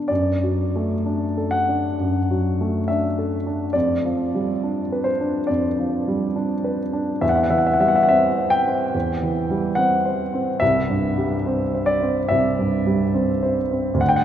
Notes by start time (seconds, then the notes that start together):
Already playing: B3 D4 G4
0.08 F#2 D5
0.43 F#3
0.76 A3
1.06 D4
1.38 A4
1.51 F#5
1.69 D4
1.99 F#2
2.31 F#3
2.61 A3
2.88 D4 E5
3.18 A4
3.47 D4
3.73 F2 D5
4.05 F3
4.35 G3
4.64 D4
4.92 B4
5.04 C5
5.21 D4
5.47 F2 D5
5.79 F3
6.08 G3
6.36 D4
6.64 B4
6.93 D4
7.21 E2 E5
7.29 F#5
7.36 E5
7.43 F#5
7.50 E3 E5
7.58 F#5
7.67 E5
7.74 F#5
7.80 G3 E5
7.88 F#5
7.96 E5
8.03 F#5
8.09 C4 E5
8.38 C5
8.50 G5
8.67 C4
8.94 E2
9.23 E3
9.50 G3
9.75 C4 F#5
10.05 C5
10.33 C4
10.60 C2 E5
10.90 G2
11.18 G3
11.46 C4
11.74 C5
11.86 D5
12.02 C4
12.29 C2 E5
12.59 G2
12.86 G3
13.14 C4
13.43 C5
13.71 C4
13.94 D2
14.01 F#5
14.09 G5
14.16 F#5